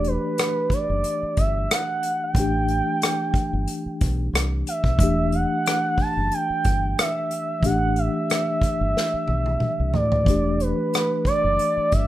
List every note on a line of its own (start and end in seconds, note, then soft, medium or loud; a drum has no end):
0.00 0.16 E1 medium
0.00 2.30 E3 medium
0.00 2.31 A3 medium
0.00 2.32 D4 soft
0.00 2.36 G4 medium
0.04 0.75 B4 medium
0.04 closed hi-hat soft
0.38 cross-stick loud
0.38 closed hi-hat medium
0.70 1.40 D5 loud
0.70 muted fingered electric bass stroke soft
0.70 kick medium
0.70 closed hi-hat medium
0.89 1.02 F#1 medium
1.04 closed hi-hat medium
1.23 muted fingered electric bass stroke soft
1.37 1.66 G1 medium
1.37 1.74 E5 medium
1.37 kick medium
1.37 closed hi-hat medium
1.71 2.25 F#5 medium
1.71 cross-stick loud
1.71 closed hi-hat medium
2.03 closed hi-hat medium
2.24 4.20 G5 medium
2.34 2.80 A1 medium
2.34 4.94 E3 medium
2.34 4.95 A3 medium
2.34 kick medium
2.34 closed hi-hat medium
2.38 4.96 D4 medium
2.38 4.97 G4 medium
2.68 closed hi-hat soft
3.02 cross-stick loud
3.02 closed hi-hat medium
3.34 muted fingered electric bass stroke soft
3.34 kick medium
3.34 closed hi-hat medium
3.53 3.66 G1 medium
3.68 closed hi-hat medium
3.86 muted fingered electric bass stroke soft
4.01 4.30 B1 medium
4.01 kick medium
4.01 closed hi-hat medium
4.33 4.62 C2 medium
4.33 cross-stick loud
4.33 closed hi-hat medium
4.67 5.36 E5 medium
4.67 closed hi-hat medium
4.84 4.97 B1 medium
4.84 kick medium
4.97 5.44 E1 medium
4.97 7.58 E3 medium
4.97 7.59 A3 medium
4.97 7.60 D4 medium
4.97 kick loud
4.97 closed hi-hat medium
5.03 7.61 G4 medium
5.32 6.02 F#5 medium
5.32 closed hi-hat soft
5.66 cross-stick loud
5.66 closed hi-hat medium
5.98 6.35 A5 loud
5.98 muted fingered electric bass stroke soft
5.98 kick medium
5.98 open hi-hat soft
6.17 6.29 F#1 medium
6.32 6.98 G5 loud
6.32 closed hi-hat medium
6.50 muted fingered electric bass stroke soft
6.64 6.94 G1 medium
6.64 kick medium
6.64 closed hi-hat medium
6.99 7.67 E5 medium
6.99 cross-stick loud
6.99 closed hi-hat medium
7.31 closed hi-hat medium
7.60 8.08 A1 medium
7.60 10.21 E3 medium
7.60 10.22 A3 medium
7.60 10.23 D4 medium
7.60 kick medium
7.60 closed hi-hat medium
7.65 10.24 G4 medium
7.65 8.00 F#5 loud
7.96 9.94 E5 medium
7.96 closed hi-hat soft
8.30 cross-stick medium
8.30 closed hi-hat medium
8.62 muted fingered electric bass stroke soft
8.62 kick medium
8.62 closed hi-hat medium
8.81 8.93 G1 medium
8.97 snare medium
9.14 muted fingered electric bass stroke soft
9.28 9.57 B1 medium
9.28 high tom medium
9.46 high tom medium
9.60 muted fingered electric bass stroke soft
9.60 mid tom medium
9.80 9.92 C2 medium
9.94 10.23 A2 medium
9.94 10.62 D5 medium
9.94 floor tom medium
10.12 floor tom medium
10.24 10.71 E1 medium
10.24 12.07 E3 medium
10.24 12.07 A3 medium
10.24 12.07 D4 medium
10.24 kick loud
10.24 closed hi-hat medium
10.30 12.07 G4 medium
10.60 11.26 B4 medium
10.60 closed hi-hat soft
10.94 cross-stick loud
10.94 closed hi-hat medium
11.25 11.94 D5 medium
11.25 muted fingered electric bass stroke soft
11.25 kick medium
11.25 closed hi-hat medium
11.44 11.57 F#1 medium
11.59 closed hi-hat medium
11.77 muted fingered electric bass stroke soft
11.92 12.07 G1 medium
11.92 12.07 E5 medium
11.92 kick medium
11.92 closed hi-hat medium